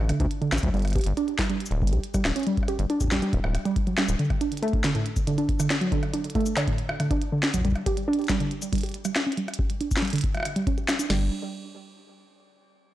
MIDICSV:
0, 0, Header, 1, 4, 480
1, 0, Start_track
1, 0, Tempo, 431655
1, 823, Time_signature, 4, 2, 24, 8
1, 14390, End_track
2, 0, Start_track
2, 0, Title_t, "Synth arpeggio sound"
2, 0, Program_c, 0, 84
2, 102, Note_on_c, 0, 50, 78
2, 208, Note_off_c, 0, 50, 0
2, 223, Note_on_c, 0, 62, 72
2, 329, Note_off_c, 0, 62, 0
2, 462, Note_on_c, 0, 50, 79
2, 526, Note_off_c, 0, 50, 0
2, 702, Note_on_c, 0, 54, 78
2, 809, Note_off_c, 0, 54, 0
2, 822, Note_on_c, 0, 55, 82
2, 928, Note_off_c, 0, 55, 0
2, 1061, Note_on_c, 0, 67, 77
2, 1126, Note_off_c, 0, 67, 0
2, 1303, Note_on_c, 0, 62, 100
2, 1409, Note_off_c, 0, 62, 0
2, 1543, Note_on_c, 0, 55, 76
2, 1649, Note_off_c, 0, 55, 0
2, 1662, Note_on_c, 0, 55, 76
2, 1769, Note_off_c, 0, 55, 0
2, 2023, Note_on_c, 0, 55, 79
2, 2129, Note_off_c, 0, 55, 0
2, 2142, Note_on_c, 0, 67, 74
2, 2249, Note_off_c, 0, 67, 0
2, 2382, Note_on_c, 0, 55, 79
2, 2446, Note_off_c, 0, 55, 0
2, 2622, Note_on_c, 0, 61, 81
2, 2728, Note_off_c, 0, 61, 0
2, 2744, Note_on_c, 0, 55, 85
2, 2849, Note_off_c, 0, 55, 0
2, 2983, Note_on_c, 0, 67, 81
2, 3047, Note_off_c, 0, 67, 0
2, 3222, Note_on_c, 0, 62, 106
2, 3329, Note_off_c, 0, 62, 0
2, 3464, Note_on_c, 0, 55, 78
2, 3569, Note_off_c, 0, 55, 0
2, 3583, Note_on_c, 0, 55, 75
2, 3689, Note_off_c, 0, 55, 0
2, 4063, Note_on_c, 0, 55, 73
2, 4169, Note_off_c, 0, 55, 0
2, 4304, Note_on_c, 0, 54, 78
2, 4410, Note_off_c, 0, 54, 0
2, 4423, Note_on_c, 0, 55, 97
2, 4537, Note_off_c, 0, 55, 0
2, 4663, Note_on_c, 0, 50, 82
2, 4769, Note_off_c, 0, 50, 0
2, 4904, Note_on_c, 0, 62, 79
2, 4967, Note_off_c, 0, 62, 0
2, 5143, Note_on_c, 0, 57, 105
2, 5249, Note_off_c, 0, 57, 0
2, 5383, Note_on_c, 0, 50, 81
2, 5489, Note_off_c, 0, 50, 0
2, 5504, Note_on_c, 0, 45, 77
2, 5609, Note_off_c, 0, 45, 0
2, 5862, Note_on_c, 0, 50, 81
2, 5969, Note_off_c, 0, 50, 0
2, 5982, Note_on_c, 0, 62, 76
2, 6089, Note_off_c, 0, 62, 0
2, 6223, Note_on_c, 0, 50, 78
2, 6287, Note_off_c, 0, 50, 0
2, 6463, Note_on_c, 0, 54, 80
2, 6569, Note_off_c, 0, 54, 0
2, 6582, Note_on_c, 0, 50, 83
2, 6688, Note_off_c, 0, 50, 0
2, 6822, Note_on_c, 0, 62, 79
2, 6886, Note_off_c, 0, 62, 0
2, 7063, Note_on_c, 0, 57, 99
2, 7169, Note_off_c, 0, 57, 0
2, 7303, Note_on_c, 0, 50, 80
2, 7409, Note_off_c, 0, 50, 0
2, 7421, Note_on_c, 0, 45, 75
2, 7528, Note_off_c, 0, 45, 0
2, 7782, Note_on_c, 0, 50, 78
2, 7888, Note_off_c, 0, 50, 0
2, 7902, Note_on_c, 0, 62, 81
2, 8009, Note_off_c, 0, 62, 0
2, 8143, Note_on_c, 0, 50, 79
2, 8207, Note_off_c, 0, 50, 0
2, 8383, Note_on_c, 0, 54, 79
2, 8489, Note_off_c, 0, 54, 0
2, 8503, Note_on_c, 0, 55, 84
2, 8609, Note_off_c, 0, 55, 0
2, 8743, Note_on_c, 0, 67, 76
2, 8807, Note_off_c, 0, 67, 0
2, 8983, Note_on_c, 0, 62, 102
2, 9089, Note_off_c, 0, 62, 0
2, 9223, Note_on_c, 0, 55, 80
2, 9329, Note_off_c, 0, 55, 0
2, 9342, Note_on_c, 0, 50, 80
2, 9449, Note_off_c, 0, 50, 0
2, 9701, Note_on_c, 0, 55, 80
2, 9808, Note_off_c, 0, 55, 0
2, 9823, Note_on_c, 0, 67, 82
2, 9929, Note_off_c, 0, 67, 0
2, 10063, Note_on_c, 0, 55, 78
2, 10127, Note_off_c, 0, 55, 0
2, 10303, Note_on_c, 0, 61, 78
2, 10409, Note_off_c, 0, 61, 0
2, 10423, Note_on_c, 0, 55, 85
2, 10529, Note_off_c, 0, 55, 0
2, 10663, Note_on_c, 0, 67, 81
2, 10727, Note_off_c, 0, 67, 0
2, 10904, Note_on_c, 0, 62, 97
2, 11010, Note_off_c, 0, 62, 0
2, 11144, Note_on_c, 0, 55, 78
2, 11249, Note_off_c, 0, 55, 0
2, 11264, Note_on_c, 0, 50, 76
2, 11370, Note_off_c, 0, 50, 0
2, 11743, Note_on_c, 0, 55, 80
2, 11857, Note_off_c, 0, 55, 0
2, 11863, Note_on_c, 0, 61, 82
2, 11969, Note_off_c, 0, 61, 0
2, 11983, Note_on_c, 0, 67, 79
2, 12089, Note_off_c, 0, 67, 0
2, 12223, Note_on_c, 0, 62, 82
2, 12337, Note_off_c, 0, 62, 0
2, 12343, Note_on_c, 0, 55, 93
2, 12566, Note_off_c, 0, 55, 0
2, 14390, End_track
3, 0, Start_track
3, 0, Title_t, "Analog synth bass"
3, 0, Program_c, 1, 38
3, 0, Note_on_c, 1, 33, 105
3, 135, Note_off_c, 1, 33, 0
3, 223, Note_on_c, 1, 38, 93
3, 299, Note_off_c, 1, 38, 0
3, 582, Note_on_c, 1, 33, 79
3, 658, Note_off_c, 1, 33, 0
3, 701, Note_on_c, 1, 38, 97
3, 778, Note_off_c, 1, 38, 0
3, 821, Note_on_c, 1, 31, 101
3, 1111, Note_off_c, 1, 31, 0
3, 1182, Note_on_c, 1, 31, 101
3, 1258, Note_off_c, 1, 31, 0
3, 1901, Note_on_c, 1, 26, 104
3, 2022, Note_on_c, 1, 31, 100
3, 2039, Note_off_c, 1, 26, 0
3, 2142, Note_on_c, 1, 35, 92
3, 2159, Note_off_c, 1, 31, 0
3, 2218, Note_off_c, 1, 35, 0
3, 2503, Note_on_c, 1, 26, 103
3, 2579, Note_off_c, 1, 26, 0
3, 3102, Note_on_c, 1, 31, 98
3, 3178, Note_off_c, 1, 31, 0
3, 3703, Note_on_c, 1, 26, 99
3, 3779, Note_off_c, 1, 26, 0
3, 3824, Note_on_c, 1, 26, 104
3, 3975, Note_off_c, 1, 26, 0
3, 4544, Note_on_c, 1, 26, 101
3, 4619, Note_off_c, 1, 26, 0
3, 12344, Note_on_c, 1, 31, 99
3, 12567, Note_off_c, 1, 31, 0
3, 14390, End_track
4, 0, Start_track
4, 0, Title_t, "Drums"
4, 103, Note_on_c, 9, 37, 55
4, 103, Note_on_c, 9, 42, 97
4, 214, Note_off_c, 9, 37, 0
4, 214, Note_off_c, 9, 42, 0
4, 222, Note_on_c, 9, 36, 117
4, 223, Note_on_c, 9, 42, 57
4, 334, Note_off_c, 9, 36, 0
4, 334, Note_off_c, 9, 42, 0
4, 343, Note_on_c, 9, 42, 58
4, 454, Note_off_c, 9, 42, 0
4, 463, Note_on_c, 9, 42, 27
4, 575, Note_off_c, 9, 42, 0
4, 583, Note_on_c, 9, 37, 81
4, 583, Note_on_c, 9, 40, 126
4, 583, Note_on_c, 9, 42, 101
4, 643, Note_on_c, 9, 69, 76
4, 694, Note_off_c, 9, 37, 0
4, 694, Note_off_c, 9, 40, 0
4, 694, Note_off_c, 9, 42, 0
4, 702, Note_on_c, 9, 36, 109
4, 702, Note_on_c, 9, 42, 60
4, 754, Note_off_c, 9, 69, 0
4, 813, Note_off_c, 9, 36, 0
4, 813, Note_off_c, 9, 42, 0
4, 823, Note_on_c, 9, 42, 24
4, 853, Note_off_c, 9, 42, 0
4, 853, Note_on_c, 9, 42, 26
4, 884, Note_off_c, 9, 42, 0
4, 884, Note_on_c, 9, 42, 29
4, 913, Note_off_c, 9, 42, 0
4, 913, Note_on_c, 9, 42, 32
4, 944, Note_off_c, 9, 42, 0
4, 944, Note_on_c, 9, 37, 35
4, 944, Note_on_c, 9, 42, 39
4, 974, Note_off_c, 9, 42, 0
4, 974, Note_on_c, 9, 42, 42
4, 1003, Note_off_c, 9, 42, 0
4, 1003, Note_on_c, 9, 42, 44
4, 1023, Note_off_c, 9, 37, 0
4, 1023, Note_on_c, 9, 37, 27
4, 1033, Note_off_c, 9, 42, 0
4, 1033, Note_on_c, 9, 42, 52
4, 1062, Note_on_c, 9, 36, 116
4, 1063, Note_off_c, 9, 42, 0
4, 1063, Note_on_c, 9, 42, 42
4, 1094, Note_off_c, 9, 42, 0
4, 1094, Note_on_c, 9, 42, 56
4, 1104, Note_off_c, 9, 37, 0
4, 1104, Note_on_c, 9, 37, 23
4, 1124, Note_off_c, 9, 42, 0
4, 1124, Note_on_c, 9, 42, 64
4, 1153, Note_off_c, 9, 42, 0
4, 1153, Note_on_c, 9, 42, 77
4, 1173, Note_off_c, 9, 36, 0
4, 1184, Note_off_c, 9, 42, 0
4, 1184, Note_on_c, 9, 42, 56
4, 1215, Note_off_c, 9, 37, 0
4, 1295, Note_off_c, 9, 42, 0
4, 1303, Note_on_c, 9, 42, 57
4, 1414, Note_off_c, 9, 42, 0
4, 1423, Note_on_c, 9, 42, 25
4, 1534, Note_off_c, 9, 42, 0
4, 1542, Note_on_c, 9, 36, 127
4, 1543, Note_on_c, 9, 40, 119
4, 1543, Note_on_c, 9, 42, 93
4, 1653, Note_off_c, 9, 36, 0
4, 1654, Note_off_c, 9, 40, 0
4, 1654, Note_off_c, 9, 42, 0
4, 1663, Note_on_c, 9, 42, 58
4, 1775, Note_off_c, 9, 42, 0
4, 1784, Note_on_c, 9, 42, 53
4, 1843, Note_on_c, 9, 69, 52
4, 1895, Note_off_c, 9, 42, 0
4, 1904, Note_on_c, 9, 42, 27
4, 1954, Note_off_c, 9, 69, 0
4, 2015, Note_off_c, 9, 42, 0
4, 2022, Note_on_c, 9, 36, 110
4, 2083, Note_on_c, 9, 42, 97
4, 2133, Note_off_c, 9, 36, 0
4, 2143, Note_off_c, 9, 42, 0
4, 2143, Note_on_c, 9, 42, 53
4, 2254, Note_off_c, 9, 42, 0
4, 2263, Note_on_c, 9, 42, 56
4, 2375, Note_off_c, 9, 42, 0
4, 2382, Note_on_c, 9, 36, 111
4, 2384, Note_on_c, 9, 37, 35
4, 2384, Note_on_c, 9, 42, 26
4, 2384, Note_on_c, 9, 69, 75
4, 2493, Note_off_c, 9, 36, 0
4, 2495, Note_off_c, 9, 37, 0
4, 2495, Note_off_c, 9, 42, 0
4, 2495, Note_off_c, 9, 69, 0
4, 2504, Note_on_c, 9, 37, 77
4, 2504, Note_on_c, 9, 40, 127
4, 2615, Note_off_c, 9, 37, 0
4, 2615, Note_off_c, 9, 40, 0
4, 2624, Note_on_c, 9, 42, 99
4, 2662, Note_off_c, 9, 42, 0
4, 2662, Note_on_c, 9, 42, 36
4, 2703, Note_off_c, 9, 42, 0
4, 2703, Note_on_c, 9, 42, 47
4, 2743, Note_off_c, 9, 42, 0
4, 2743, Note_on_c, 9, 42, 49
4, 2854, Note_off_c, 9, 42, 0
4, 2862, Note_on_c, 9, 36, 123
4, 2862, Note_on_c, 9, 42, 27
4, 2922, Note_on_c, 9, 37, 37
4, 2973, Note_off_c, 9, 42, 0
4, 2974, Note_off_c, 9, 36, 0
4, 2982, Note_on_c, 9, 42, 91
4, 3034, Note_off_c, 9, 37, 0
4, 3094, Note_off_c, 9, 42, 0
4, 3103, Note_on_c, 9, 42, 54
4, 3214, Note_off_c, 9, 42, 0
4, 3222, Note_on_c, 9, 42, 54
4, 3333, Note_off_c, 9, 42, 0
4, 3343, Note_on_c, 9, 36, 104
4, 3343, Note_on_c, 9, 42, 26
4, 3343, Note_on_c, 9, 69, 56
4, 3383, Note_off_c, 9, 36, 0
4, 3383, Note_on_c, 9, 36, 88
4, 3423, Note_off_c, 9, 36, 0
4, 3423, Note_on_c, 9, 36, 70
4, 3454, Note_off_c, 9, 42, 0
4, 3454, Note_off_c, 9, 69, 0
4, 3463, Note_on_c, 9, 40, 112
4, 3463, Note_on_c, 9, 42, 82
4, 3503, Note_off_c, 9, 36, 0
4, 3503, Note_on_c, 9, 36, 47
4, 3543, Note_off_c, 9, 36, 0
4, 3543, Note_on_c, 9, 36, 38
4, 3575, Note_off_c, 9, 40, 0
4, 3575, Note_off_c, 9, 42, 0
4, 3583, Note_on_c, 9, 42, 55
4, 3654, Note_off_c, 9, 36, 0
4, 3695, Note_off_c, 9, 42, 0
4, 3703, Note_on_c, 9, 36, 108
4, 3703, Note_on_c, 9, 42, 50
4, 3814, Note_off_c, 9, 36, 0
4, 3815, Note_off_c, 9, 42, 0
4, 3824, Note_on_c, 9, 37, 75
4, 3936, Note_off_c, 9, 37, 0
4, 3944, Note_on_c, 9, 37, 50
4, 3944, Note_on_c, 9, 42, 94
4, 4055, Note_off_c, 9, 37, 0
4, 4055, Note_off_c, 9, 42, 0
4, 4064, Note_on_c, 9, 42, 51
4, 4175, Note_off_c, 9, 42, 0
4, 4183, Note_on_c, 9, 36, 127
4, 4183, Note_on_c, 9, 42, 56
4, 4294, Note_off_c, 9, 36, 0
4, 4295, Note_off_c, 9, 42, 0
4, 4303, Note_on_c, 9, 42, 26
4, 4415, Note_off_c, 9, 42, 0
4, 4423, Note_on_c, 9, 37, 77
4, 4423, Note_on_c, 9, 40, 127
4, 4423, Note_on_c, 9, 42, 92
4, 4534, Note_off_c, 9, 37, 0
4, 4534, Note_off_c, 9, 40, 0
4, 4534, Note_off_c, 9, 42, 0
4, 4543, Note_on_c, 9, 42, 58
4, 4543, Note_on_c, 9, 69, 83
4, 4655, Note_off_c, 9, 42, 0
4, 4655, Note_off_c, 9, 69, 0
4, 4663, Note_on_c, 9, 42, 49
4, 4774, Note_off_c, 9, 42, 0
4, 4783, Note_on_c, 9, 36, 104
4, 4784, Note_on_c, 9, 37, 35
4, 4784, Note_on_c, 9, 42, 27
4, 4894, Note_off_c, 9, 36, 0
4, 4896, Note_off_c, 9, 37, 0
4, 4896, Note_off_c, 9, 42, 0
4, 4905, Note_on_c, 9, 42, 89
4, 5016, Note_off_c, 9, 42, 0
4, 5024, Note_on_c, 9, 42, 48
4, 5085, Note_off_c, 9, 42, 0
4, 5085, Note_on_c, 9, 42, 41
4, 5144, Note_off_c, 9, 42, 0
4, 5144, Note_on_c, 9, 42, 48
4, 5204, Note_off_c, 9, 42, 0
4, 5204, Note_on_c, 9, 42, 28
4, 5263, Note_on_c, 9, 36, 125
4, 5264, Note_off_c, 9, 42, 0
4, 5264, Note_on_c, 9, 42, 25
4, 5374, Note_off_c, 9, 36, 0
4, 5376, Note_off_c, 9, 42, 0
4, 5384, Note_on_c, 9, 40, 111
4, 5384, Note_on_c, 9, 42, 84
4, 5495, Note_off_c, 9, 40, 0
4, 5495, Note_off_c, 9, 42, 0
4, 5504, Note_on_c, 9, 42, 53
4, 5615, Note_off_c, 9, 42, 0
4, 5624, Note_on_c, 9, 42, 49
4, 5735, Note_off_c, 9, 42, 0
4, 5743, Note_on_c, 9, 36, 107
4, 5744, Note_on_c, 9, 42, 26
4, 5744, Note_on_c, 9, 69, 65
4, 5854, Note_off_c, 9, 36, 0
4, 5855, Note_off_c, 9, 42, 0
4, 5855, Note_off_c, 9, 69, 0
4, 5863, Note_on_c, 9, 42, 94
4, 5975, Note_off_c, 9, 42, 0
4, 5983, Note_on_c, 9, 42, 50
4, 6094, Note_off_c, 9, 42, 0
4, 6103, Note_on_c, 9, 36, 111
4, 6104, Note_on_c, 9, 42, 52
4, 6214, Note_off_c, 9, 36, 0
4, 6215, Note_off_c, 9, 42, 0
4, 6224, Note_on_c, 9, 37, 37
4, 6224, Note_on_c, 9, 42, 24
4, 6224, Note_on_c, 9, 69, 85
4, 6335, Note_off_c, 9, 37, 0
4, 6335, Note_off_c, 9, 42, 0
4, 6335, Note_off_c, 9, 69, 0
4, 6343, Note_on_c, 9, 37, 75
4, 6343, Note_on_c, 9, 40, 123
4, 6343, Note_on_c, 9, 42, 85
4, 6455, Note_off_c, 9, 37, 0
4, 6455, Note_off_c, 9, 40, 0
4, 6455, Note_off_c, 9, 42, 0
4, 6464, Note_on_c, 9, 42, 53
4, 6575, Note_off_c, 9, 42, 0
4, 6583, Note_on_c, 9, 36, 118
4, 6583, Note_on_c, 9, 42, 49
4, 6694, Note_off_c, 9, 36, 0
4, 6694, Note_off_c, 9, 42, 0
4, 6703, Note_on_c, 9, 37, 38
4, 6703, Note_on_c, 9, 42, 26
4, 6814, Note_off_c, 9, 37, 0
4, 6814, Note_off_c, 9, 42, 0
4, 6823, Note_on_c, 9, 42, 86
4, 6934, Note_off_c, 9, 42, 0
4, 6943, Note_on_c, 9, 42, 47
4, 7004, Note_off_c, 9, 42, 0
4, 7004, Note_on_c, 9, 42, 42
4, 7063, Note_off_c, 9, 42, 0
4, 7063, Note_on_c, 9, 36, 97
4, 7063, Note_on_c, 9, 42, 31
4, 7123, Note_off_c, 9, 42, 0
4, 7123, Note_on_c, 9, 42, 27
4, 7174, Note_off_c, 9, 36, 0
4, 7183, Note_off_c, 9, 42, 0
4, 7183, Note_on_c, 9, 42, 24
4, 7183, Note_on_c, 9, 69, 61
4, 7294, Note_off_c, 9, 42, 0
4, 7294, Note_off_c, 9, 69, 0
4, 7302, Note_on_c, 9, 40, 106
4, 7302, Note_on_c, 9, 42, 82
4, 7414, Note_off_c, 9, 40, 0
4, 7414, Note_off_c, 9, 42, 0
4, 7423, Note_on_c, 9, 36, 104
4, 7423, Note_on_c, 9, 42, 53
4, 7534, Note_off_c, 9, 36, 0
4, 7534, Note_off_c, 9, 42, 0
4, 7543, Note_on_c, 9, 42, 49
4, 7654, Note_off_c, 9, 42, 0
4, 7663, Note_on_c, 9, 37, 83
4, 7774, Note_off_c, 9, 37, 0
4, 7783, Note_on_c, 9, 37, 54
4, 7783, Note_on_c, 9, 42, 88
4, 7894, Note_off_c, 9, 37, 0
4, 7894, Note_off_c, 9, 42, 0
4, 7903, Note_on_c, 9, 36, 121
4, 7903, Note_on_c, 9, 42, 49
4, 8014, Note_off_c, 9, 36, 0
4, 8015, Note_off_c, 9, 42, 0
4, 8024, Note_on_c, 9, 42, 50
4, 8135, Note_off_c, 9, 42, 0
4, 8263, Note_on_c, 9, 40, 118
4, 8374, Note_off_c, 9, 40, 0
4, 8383, Note_on_c, 9, 36, 45
4, 8383, Note_on_c, 9, 42, 93
4, 8383, Note_on_c, 9, 69, 85
4, 8424, Note_off_c, 9, 36, 0
4, 8424, Note_on_c, 9, 36, 54
4, 8463, Note_off_c, 9, 36, 0
4, 8463, Note_on_c, 9, 36, 65
4, 8494, Note_off_c, 9, 42, 0
4, 8494, Note_off_c, 9, 69, 0
4, 8503, Note_off_c, 9, 36, 0
4, 8503, Note_on_c, 9, 36, 74
4, 8504, Note_on_c, 9, 42, 52
4, 8543, Note_off_c, 9, 36, 0
4, 8543, Note_on_c, 9, 36, 83
4, 8583, Note_off_c, 9, 36, 0
4, 8583, Note_on_c, 9, 36, 95
4, 8615, Note_off_c, 9, 42, 0
4, 8624, Note_on_c, 9, 37, 39
4, 8624, Note_on_c, 9, 42, 27
4, 8694, Note_off_c, 9, 36, 0
4, 8735, Note_off_c, 9, 37, 0
4, 8735, Note_off_c, 9, 42, 0
4, 8744, Note_on_c, 9, 36, 102
4, 8744, Note_on_c, 9, 42, 91
4, 8855, Note_off_c, 9, 36, 0
4, 8856, Note_off_c, 9, 42, 0
4, 8864, Note_on_c, 9, 42, 54
4, 8975, Note_off_c, 9, 42, 0
4, 9044, Note_on_c, 9, 42, 50
4, 9104, Note_off_c, 9, 42, 0
4, 9104, Note_on_c, 9, 42, 11
4, 9135, Note_off_c, 9, 42, 0
4, 9135, Note_on_c, 9, 42, 15
4, 9164, Note_off_c, 9, 42, 0
4, 9164, Note_on_c, 9, 42, 18
4, 9195, Note_off_c, 9, 42, 0
4, 9195, Note_on_c, 9, 42, 20
4, 9224, Note_off_c, 9, 42, 0
4, 9224, Note_on_c, 9, 36, 116
4, 9224, Note_on_c, 9, 40, 104
4, 9224, Note_on_c, 9, 42, 86
4, 9335, Note_off_c, 9, 36, 0
4, 9335, Note_off_c, 9, 40, 0
4, 9335, Note_off_c, 9, 42, 0
4, 9344, Note_on_c, 9, 42, 53
4, 9455, Note_off_c, 9, 42, 0
4, 9464, Note_on_c, 9, 42, 52
4, 9576, Note_off_c, 9, 42, 0
4, 9585, Note_on_c, 9, 42, 26
4, 9585, Note_on_c, 9, 69, 66
4, 9697, Note_off_c, 9, 42, 0
4, 9697, Note_off_c, 9, 69, 0
4, 9704, Note_on_c, 9, 36, 103
4, 9704, Note_on_c, 9, 42, 86
4, 9735, Note_off_c, 9, 42, 0
4, 9735, Note_on_c, 9, 42, 69
4, 9764, Note_off_c, 9, 42, 0
4, 9764, Note_on_c, 9, 42, 57
4, 9794, Note_off_c, 9, 42, 0
4, 9794, Note_on_c, 9, 42, 47
4, 9815, Note_off_c, 9, 36, 0
4, 9824, Note_off_c, 9, 42, 0
4, 9824, Note_on_c, 9, 42, 52
4, 9884, Note_off_c, 9, 42, 0
4, 9884, Note_on_c, 9, 42, 26
4, 9914, Note_off_c, 9, 42, 0
4, 9914, Note_on_c, 9, 42, 20
4, 9943, Note_off_c, 9, 42, 0
4, 9943, Note_on_c, 9, 42, 56
4, 10055, Note_off_c, 9, 42, 0
4, 10063, Note_on_c, 9, 37, 38
4, 10063, Note_on_c, 9, 42, 25
4, 10063, Note_on_c, 9, 69, 81
4, 10175, Note_off_c, 9, 37, 0
4, 10175, Note_off_c, 9, 42, 0
4, 10175, Note_off_c, 9, 69, 0
4, 10183, Note_on_c, 9, 37, 83
4, 10183, Note_on_c, 9, 40, 113
4, 10183, Note_on_c, 9, 42, 87
4, 10295, Note_off_c, 9, 37, 0
4, 10295, Note_off_c, 9, 40, 0
4, 10295, Note_off_c, 9, 42, 0
4, 10364, Note_on_c, 9, 42, 55
4, 10424, Note_off_c, 9, 42, 0
4, 10424, Note_on_c, 9, 42, 49
4, 10535, Note_off_c, 9, 42, 0
4, 10544, Note_on_c, 9, 37, 41
4, 10544, Note_on_c, 9, 42, 27
4, 10604, Note_off_c, 9, 42, 0
4, 10604, Note_on_c, 9, 42, 94
4, 10655, Note_off_c, 9, 37, 0
4, 10664, Note_on_c, 9, 36, 118
4, 10715, Note_off_c, 9, 42, 0
4, 10775, Note_off_c, 9, 36, 0
4, 10784, Note_on_c, 9, 42, 53
4, 10895, Note_off_c, 9, 42, 0
4, 10904, Note_on_c, 9, 42, 55
4, 11016, Note_off_c, 9, 42, 0
4, 11024, Note_on_c, 9, 36, 105
4, 11024, Note_on_c, 9, 69, 60
4, 11084, Note_on_c, 9, 40, 110
4, 11135, Note_off_c, 9, 36, 0
4, 11135, Note_off_c, 9, 69, 0
4, 11145, Note_on_c, 9, 42, 38
4, 11175, Note_off_c, 9, 42, 0
4, 11175, Note_on_c, 9, 42, 44
4, 11195, Note_off_c, 9, 40, 0
4, 11204, Note_off_c, 9, 42, 0
4, 11204, Note_on_c, 9, 42, 50
4, 11234, Note_off_c, 9, 42, 0
4, 11234, Note_on_c, 9, 42, 53
4, 11264, Note_off_c, 9, 42, 0
4, 11264, Note_on_c, 9, 42, 66
4, 11294, Note_off_c, 9, 42, 0
4, 11294, Note_on_c, 9, 42, 69
4, 11324, Note_off_c, 9, 42, 0
4, 11324, Note_on_c, 9, 42, 81
4, 11354, Note_off_c, 9, 42, 0
4, 11354, Note_on_c, 9, 42, 85
4, 11383, Note_on_c, 9, 36, 105
4, 11465, Note_off_c, 9, 42, 0
4, 11495, Note_off_c, 9, 36, 0
4, 11504, Note_on_c, 9, 37, 37
4, 11504, Note_on_c, 9, 42, 27
4, 11534, Note_off_c, 9, 37, 0
4, 11534, Note_on_c, 9, 37, 49
4, 11565, Note_off_c, 9, 37, 0
4, 11565, Note_on_c, 9, 37, 58
4, 11594, Note_off_c, 9, 37, 0
4, 11594, Note_on_c, 9, 37, 69
4, 11615, Note_off_c, 9, 42, 0
4, 11625, Note_off_c, 9, 37, 0
4, 11625, Note_on_c, 9, 37, 55
4, 11625, Note_on_c, 9, 42, 93
4, 11736, Note_off_c, 9, 37, 0
4, 11736, Note_off_c, 9, 42, 0
4, 11744, Note_on_c, 9, 42, 55
4, 11856, Note_off_c, 9, 42, 0
4, 11863, Note_on_c, 9, 36, 117
4, 11865, Note_on_c, 9, 42, 55
4, 11975, Note_off_c, 9, 36, 0
4, 11976, Note_off_c, 9, 42, 0
4, 11985, Note_on_c, 9, 42, 27
4, 12096, Note_off_c, 9, 42, 0
4, 12105, Note_on_c, 9, 37, 89
4, 12105, Note_on_c, 9, 40, 124
4, 12105, Note_on_c, 9, 69, 66
4, 12216, Note_off_c, 9, 37, 0
4, 12216, Note_off_c, 9, 40, 0
4, 12216, Note_off_c, 9, 69, 0
4, 12225, Note_on_c, 9, 42, 57
4, 12225, Note_on_c, 9, 69, 86
4, 12336, Note_off_c, 9, 42, 0
4, 12336, Note_off_c, 9, 69, 0
4, 12343, Note_on_c, 9, 38, 102
4, 12343, Note_on_c, 9, 49, 86
4, 12455, Note_off_c, 9, 38, 0
4, 12455, Note_off_c, 9, 49, 0
4, 14390, End_track
0, 0, End_of_file